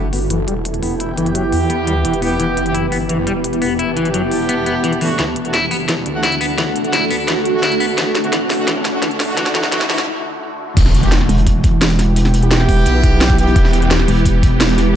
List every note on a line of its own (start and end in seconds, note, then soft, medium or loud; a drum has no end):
0.00 0.11 F#1 medium
0.00 5.15 E3 medium
0.00 5.15 B3 medium
0.00 0.28 D4 medium
0.00 5.71 E4 medium
0.00 5.15 G4 medium
0.00 0.40 A4 medium
0.12 0.29 G1 medium
0.12 0.17 B3 loud
0.12 6.07 B4 medium
0.12 open hi-hat medium
0.30 0.46 F#1 medium
0.30 0.38 E3 medium
0.30 closed hi-hat medium
0.44 0.81 E1 loud
0.44 0.52 G3 loud
0.44 3.27 G5 loud
0.44 closed hi-hat medium
0.65 closed hi-hat medium
0.74 closed hi-hat soft
0.83 1.16 E1 medium
0.83 0.93 B3 medium
0.83 open hi-hat medium
1.00 1.11 E4 medium
1.00 closed hi-hat medium
1.18 1.51 F#1 loud
1.18 1.28 E3 loud
1.18 closed hi-hat medium
1.26 2.20 B3 loud
1.26 2.20 E4 loud
1.26 2.20 G4 loud
1.26 closed hi-hat soft
1.35 1.42 F#3 medium
1.35 closed hi-hat medium
1.52 2.03 E2 medium
1.52 open hi-hat medium
1.70 1.74 B3 loud
1.70 closed hi-hat medium
1.87 1.92 G3 loud
1.87 closed hi-hat medium
2.05 2.38 E1 loud
2.05 2.12 E3 medium
2.05 closed hi-hat medium
2.13 closed hi-hat soft
2.22 2.64 B3 loud
2.22 2.33 B3 medium
2.22 2.64 E4 medium
2.22 2.64 G4 loud
2.22 open hi-hat medium
2.40 2.56 E1 loud
2.40 2.44 E3 loud
2.40 closed hi-hat medium
2.57 2.91 F#1 medium
2.57 closed hi-hat medium
2.66 2.75 B3 medium
2.66 2.75 E4 medium
2.66 2.75 G4 loud
2.66 closed hi-hat soft
2.74 2.85 E4 loud
2.74 closed hi-hat medium
2.92 3.08 G1 medium
2.92 2.96 B3 loud
2.92 open hi-hat medium
3.09 3.25 F#1 medium
3.09 3.17 E3 medium
3.09 closed hi-hat medium
3.16 6.21 A5 medium
3.27 3.60 E1 medium
3.27 3.31 G3 loud
3.27 closed hi-hat medium
3.44 closed hi-hat medium
3.53 closed hi-hat soft
3.62 3.95 E1 loud
3.62 3.73 B3 medium
3.62 open hi-hat medium
3.79 3.90 E4 medium
3.79 closed hi-hat medium
3.97 4.30 F#1 medium
3.97 4.07 E3 loud
3.97 closed hi-hat medium
4.05 4.99 B3 loud
4.05 4.99 E4 medium
4.05 4.99 G4 loud
4.05 closed hi-hat soft
4.14 4.21 F#3 medium
4.14 closed hi-hat medium
4.31 4.65 E1 medium
4.31 open hi-hat medium
4.49 4.53 B3 loud
4.49 closed hi-hat medium
4.66 5.17 E1 loud
4.66 4.74 B3 medium
4.66 closed hi-hat medium
4.84 4.91 E3 loud
4.84 closed hi-hat medium
4.93 closed hi-hat soft
5.01 5.08 E3 medium
5.01 5.19 A3 medium
5.01 5.19 D4 medium
5.01 5.19 F#4 loud
5.01 open hi-hat medium
5.19 5.35 D2 loud
5.19 10.73 D3 medium
5.19 5.23 E3 medium
5.19 10.73 A3 medium
5.19 10.07 D4 medium
5.19 10.73 F#4 medium
5.19 snare soft
5.19 closed hi-hat medium
5.19 riser medium
5.34 5.70 E1 loud
5.34 10.07 A4 medium
5.34 closed hi-hat medium
5.40 10.07 F#4 medium
5.45 5.54 A3 medium
5.45 5.54 D4 medium
5.45 5.54 F#4 medium
5.45 closed hi-hat soft
5.54 5.64 E4 loud
5.54 snare medium
5.54 closed hi-hat medium
5.58 10.07 F#5 medium
5.71 5.87 F#1 medium
5.71 5.75 B3 medium
5.71 open hi-hat medium
5.88 6.05 E1 medium
5.88 5.93 E3 medium
5.88 snare medium
5.88 closed hi-hat medium
6.06 6.39 D2 loud
6.06 closed hi-hat medium
6.15 6.24 A3 medium
6.15 6.24 D4 medium
6.15 6.24 F#4 loud
6.23 6.34 E4 medium
6.23 snare medium
6.23 closed hi-hat medium
6.32 closed hi-hat soft
6.41 6.74 D2 loud
6.41 6.45 B3 loud
6.41 open hi-hat medium
6.58 6.63 E3 loud
6.58 snare medium
6.58 closed hi-hat medium
6.76 7.09 E1 loud
6.76 closed hi-hat medium
6.84 6.94 A3 medium
6.84 6.94 D4 medium
6.84 6.94 F#4 medium
6.84 closed hi-hat soft
6.93 7.04 E4 medium
6.93 snare medium
6.93 closed hi-hat loud
7.11 7.62 D2 medium
7.11 7.15 B3 medium
7.11 open hi-hat medium
7.28 7.32 E3 loud
7.28 snare medium
7.28 closed hi-hat loud
7.45 closed hi-hat medium
7.54 7.63 A3 medium
7.54 7.63 D4 medium
7.54 7.63 F#4 loud
7.63 7.96 D2 loud
7.63 7.74 E4 medium
7.63 snare medium
7.63 closed hi-hat medium
7.72 closed hi-hat soft
7.80 7.85 B3 loud
7.80 open hi-hat medium
7.98 8.14 D2 loud
7.98 8.02 E3 loud
7.98 snare medium
7.98 closed hi-hat loud
8.15 8.49 E1 loud
8.15 snare medium
8.15 closed hi-hat medium
8.24 8.31 A3 medium
8.24 8.31 D4 medium
8.24 8.31 F#4 loud
8.24 closed hi-hat soft
8.33 8.37 E3 loud
8.33 snare medium
8.33 closed hi-hat loud
8.50 8.66 F#1 medium
8.50 snare medium
8.50 open hi-hat medium
8.59 8.66 A3 medium
8.59 8.66 D4 medium
8.59 8.66 F#4 loud
8.67 8.84 E1 loud
8.67 8.72 E3 loud
8.67 snare medium
8.67 closed hi-hat loud
8.85 9.18 D2 medium
8.85 snare medium
8.85 closed hi-hat medium
8.94 9.01 A3 medium
8.94 9.01 D4 medium
8.94 9.01 F#4 loud
9.02 9.07 E3 medium
9.02 snare medium
9.02 closed hi-hat medium
9.11 closed hi-hat soft
9.20 9.53 D2 loud
9.20 snare medium
9.20 open hi-hat medium
9.29 9.36 A3 loud
9.29 9.36 D4 medium
9.29 9.36 F#4 loud
9.37 9.42 E3 loud
9.37 9.46 A3 medium
9.37 9.46 D4 medium
9.37 9.47 F#4 loud
9.37 snare medium
9.37 closed hi-hat loud
9.46 snare medium
9.46 closed hi-hat soft
9.55 9.88 E1 loud
9.55 9.59 E3 loud
9.55 9.64 A3 loud
9.55 9.64 D4 medium
9.55 9.64 F#4 loud
9.55 snare loud
9.55 closed hi-hat medium
9.63 snare medium
9.63 closed hi-hat soft
9.72 9.77 E3 loud
9.72 9.81 A3 medium
9.72 9.81 D4 medium
9.72 9.81 F#4 loud
9.72 snare loud
9.72 closed hi-hat loud
9.81 snare medium
9.90 10.07 D2 medium
9.90 9.94 E3 loud
9.90 9.99 A3 medium
9.90 9.99 D4 medium
9.90 9.99 F#4 loud
9.90 snare medium
9.90 open hi-hat medium
9.98 snare medium
10.77 11.28 E1 loud
10.77 14.96 E3 medium
10.77 14.96 B3 medium
10.77 14.96 E4 medium
10.77 14.96 G4 medium
10.77 kick loud
10.77 closed hi-hat loud
10.77 closed hi-hat medium
10.77 crash medium
10.77 impact medium
10.85 snare medium
10.85 snare soft
10.90 14.96 G4 medium
10.90 closed hi-hat medium
10.95 closed hi-hat medium
11.03 11.12 B3 medium
11.03 11.12 E4 medium
11.03 11.12 G4 loud
11.03 closed hi-hat soft
11.11 snare loud
11.11 closed hi-hat loud
11.20 14.96 B4 medium
11.20 snare medium
11.29 12.67 E1 medium
11.29 closed hi-hat medium
11.29 open hi-hat medium
11.36 14.35 G5 medium
11.36 closed hi-hat soft
11.47 kick medium
11.47 closed hi-hat loud
11.47 closed hi-hat medium
11.64 kick loud
11.64 closed hi-hat medium
11.82 snare loud
11.82 closed hi-hat loud
11.82 closed hi-hat medium
11.90 snare medium
11.90 closed hi-hat soft
11.99 snare soft
11.99 closed hi-hat medium
12.16 closed hi-hat medium
12.25 snare soft
12.25 closed hi-hat soft
12.34 closed hi-hat medium
12.43 13.36 B3 loud
12.43 13.36 E4 medium
12.43 13.36 G4 loud
12.43 closed hi-hat soft
12.51 snare loud
12.51 closed hi-hat loud
12.60 snare medium
12.69 12.85 E1 medium
12.69 kick medium
12.69 closed hi-hat medium
12.69 open hi-hat medium
12.86 13.55 B1 loud
12.86 closed hi-hat medium
12.86 closed hi-hat loud
13.04 kick loud
13.04 closed hi-hat medium
13.21 snare loud
13.21 closed hi-hat medium
13.30 kick loud
13.30 closed hi-hat soft
13.38 13.80 B3 loud
13.38 13.80 E4 medium
13.38 13.80 G4 loud
13.38 closed hi-hat medium
13.47 closed hi-hat soft
13.56 14.07 E1 loud
13.56 kick loud
13.56 closed hi-hat medium
13.65 snare medium
13.65 snare soft
13.73 closed hi-hat medium
13.82 13.91 B3 medium
13.82 13.91 E4 medium
13.82 13.91 G4 loud
13.82 closed hi-hat soft
13.91 snare loud
13.91 closed hi-hat medium
14.00 snare medium
14.08 14.96 E1 loud
14.08 closed hi-hat medium
14.08 open hi-hat medium
14.17 closed hi-hat soft
14.25 14.96 A5 medium
14.25 kick medium
14.25 closed hi-hat medium
14.43 kick loud
14.43 closed hi-hat medium
14.60 snare loud
14.60 closed hi-hat medium
14.69 snare medium
14.69 closed hi-hat soft
14.78 snare soft
14.78 closed hi-hat medium